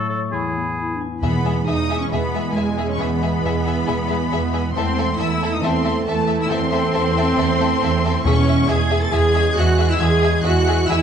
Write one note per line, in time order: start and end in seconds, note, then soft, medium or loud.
0.00 0.35 A2 soft
0.00 0.33 A3 medium
0.00 0.35 A3 soft
0.00 0.35 C#6 soft
0.09 0.20 A4 medium
0.09 4.00 C#5 soft
0.32 1.22 E2 soft
0.32 0.67 E4 soft
0.32 0.99 G#4 medium
0.32 1.01 B5 soft
0.55 4.45 B3 soft
0.78 0.97 E4 medium
0.78 1.67 B4 soft
0.95 1.08 D4 soft
1.01 4.77 G#5 soft
1.09 1.23 E4 soft
1.22 1.85 E2 medium
1.22 1.62 E2 soft
1.22 2.98 E2 soft
1.22 4.71 E3 soft
1.22 4.71 G#3 soft
1.22 1.64 B3 soft
1.22 1.64 B3 medium
1.22 1.31 G#4 soft
1.22 1.31 E5 soft
1.22 1.64 B5 medium
1.45 2.33 G#3 soft
1.45 1.53 G#4 soft
1.45 1.53 E5 soft
1.66 2.06 E2 soft
1.66 1.99 D#4 medium
1.66 2.00 D#4 medium
1.66 1.75 G#4 soft
1.66 2.55 B4 soft
1.66 1.75 E5 soft
1.66 1.99 D#6 medium
1.89 2.77 E4 soft
1.89 1.98 G#4 soft
1.89 1.97 E5 soft
1.99 2.11 C#4 soft
1.99 2.05 C#4 soft
1.99 2.12 C#6 soft
2.10 2.50 E2 soft
2.10 3.86 B2 soft
2.10 2.54 B3 medium
2.10 2.20 G#4 soft
2.10 2.20 E5 soft
2.10 2.55 B5 medium
2.34 3.21 G#3 soft
2.34 2.43 G#4 soft
2.34 2.42 E5 soft
2.54 2.94 E2 soft
2.54 2.88 G#3 medium
2.54 2.88 G#3 soft
2.54 2.65 G#4 soft
2.54 3.42 B4 soft
2.54 2.64 E5 soft
2.54 2.88 G#5 medium
2.77 3.65 E4 soft
2.77 2.85 G#4 soft
2.77 2.86 E5 soft
2.87 2.99 C#4 soft
2.92 3.01 C#6 medium
2.97 3.38 E2 medium
2.97 4.73 E2 soft
2.97 4.74 B3 medium
2.97 4.75 B3 medium
2.97 3.08 G#4 soft
2.97 3.08 E5 soft
2.97 4.75 B5 medium
3.22 4.08 G#3 soft
3.22 3.30 G#4 soft
3.22 3.30 E5 soft
3.42 3.82 E2 medium
3.42 3.53 G#4 soft
3.42 4.29 B4 soft
3.42 3.53 E5 soft
3.66 4.51 E4 soft
3.66 3.74 G#4 soft
3.66 3.75 E5 soft
3.87 4.26 E2 soft
3.87 4.77 B2 soft
3.87 3.95 G#4 soft
3.87 3.95 E5 soft
4.08 4.77 G#3 soft
4.08 4.17 G#4 soft
4.08 4.16 E5 soft
4.30 4.69 E2 medium
4.30 4.39 G#4 soft
4.30 4.77 B4 soft
4.30 4.40 E5 soft
4.53 5.39 E4 soft
4.53 4.61 G#4 soft
4.53 4.61 E5 soft
4.74 5.13 E2 medium
4.74 6.48 E2 soft
4.74 8.08 E3 soft
4.74 8.08 A3 medium
4.74 5.18 C4 medium
4.74 4.84 A4 soft
4.74 4.84 E5 medium
4.74 5.18 C6 medium
4.95 5.82 A3 soft
4.95 5.06 A4 soft
4.95 5.06 E5 soft
5.18 5.57 E2 medium
5.18 5.51 E4 medium
5.18 6.05 A4 soft
5.18 5.27 A4 soft
5.18 5.27 E5 soft
5.18 5.52 E6 medium
5.40 6.27 E4 soft
5.40 5.50 A4 soft
5.40 5.50 E5 soft
5.51 5.63 D#4 medium
5.51 5.64 D#6 medium
5.61 6.01 E2 medium
5.61 7.36 E3 soft
5.61 6.05 C4 medium
5.61 6.07 C4 medium
5.61 5.70 A4 medium
5.61 5.71 E5 medium
5.61 6.08 C6 medium
5.83 6.70 A3 soft
5.83 5.92 A4 soft
5.83 5.92 E5 soft
6.06 6.45 E2 medium
6.06 6.38 A3 medium
6.06 6.39 A3 medium
6.06 6.92 A4 soft
6.06 6.16 A4 soft
6.06 6.16 E5 soft
6.06 6.38 A5 medium
6.28 7.13 E4 soft
6.28 6.36 A4 soft
6.28 6.36 E5 soft
6.39 6.50 E4 medium
6.39 6.51 E6 medium
6.49 8.24 E2 medium
6.49 6.89 E2 medium
6.49 8.25 C4 medium
6.49 8.21 C4 medium
6.49 6.57 A4 medium
6.49 6.58 E5 medium
6.49 8.22 C6 medium
6.71 7.58 A3 soft
6.71 6.80 A4 medium
6.71 6.80 E5 soft
6.93 7.32 E2 medium
6.93 7.80 A4 soft
6.93 7.02 A4 medium
6.93 7.02 E5 soft
7.15 8.02 E4 soft
7.15 7.25 A4 medium
7.15 7.25 E5 medium
7.37 7.76 E2 medium
7.37 8.26 E3 soft
7.37 7.46 A4 medium
7.37 7.46 E5 medium
7.59 8.27 A3 soft
7.59 7.68 A4 soft
7.59 7.69 E5 soft
7.81 8.19 E2 medium
7.81 8.27 A4 soft
7.81 7.91 A4 medium
7.81 7.91 E5 medium
8.03 11.02 E4 soft
8.03 8.13 A4 medium
8.03 8.13 E5 medium
8.25 8.86 E2 medium
8.25 9.11 E2 medium
8.25 8.64 E2 medium
8.25 11.02 E3 medium
8.25 11.02 G#3 medium
8.25 8.68 C#4 medium
8.25 8.34 G#4 medium
8.25 8.35 E5 medium
8.25 8.68 C#6 medium
8.47 9.33 C#4 soft
8.47 8.55 G#4 medium
8.47 8.56 E5 medium
8.68 9.07 E2 medium
8.68 9.54 G#4 soft
8.68 8.77 G#4 medium
8.68 9.01 G#4 medium
8.68 9.02 G#4 medium
8.68 8.76 E5 medium
8.68 9.02 G#6 medium
8.90 8.99 G#4 medium
8.90 8.98 E5 medium
9.02 9.13 A4 medium
9.02 9.13 A6 medium
9.12 9.99 E2 medium
9.12 9.51 E2 medium
9.12 9.20 G#4 medium
9.12 9.56 G#4 medium
9.12 9.21 E5 medium
9.12 9.57 G#6 medium
9.34 10.20 C#4 medium
9.34 9.42 G#4 medium
9.34 9.43 E5 medium
9.56 9.95 E2 medium
9.56 9.90 F#4 medium
9.56 9.89 F#4 medium
9.56 10.42 G#4 medium
9.56 9.66 G#4 medium
9.56 9.66 E5 medium
9.56 9.90 F#6 medium
9.78 9.86 G#4 medium
9.78 9.86 E5 medium
9.89 10.00 E4 medium
9.89 10.01 E4 medium
9.89 10.02 E6 medium
10.00 10.39 E2 medium
10.00 10.87 E2 medium
10.00 10.43 G#4 medium
10.00 10.44 G#4 medium
10.00 10.09 G#4 medium
10.00 10.09 E5 medium
10.00 10.44 G#6 medium
10.22 11.02 C#4 soft
10.22 10.31 G#4 medium
10.22 10.31 E5 medium
10.43 10.83 E2 medium
10.43 10.88 F#4 medium
10.43 11.02 G#4 medium
10.43 10.53 G#4 medium
10.43 10.53 E5 medium
10.43 10.88 F#6 medium
10.67 10.75 G#4 medium
10.67 10.75 E5 medium
10.88 11.02 E2 medium
10.88 11.02 E4 medium
10.88 10.97 G#4 medium
10.88 10.98 E5 medium
10.88 11.02 E6 loud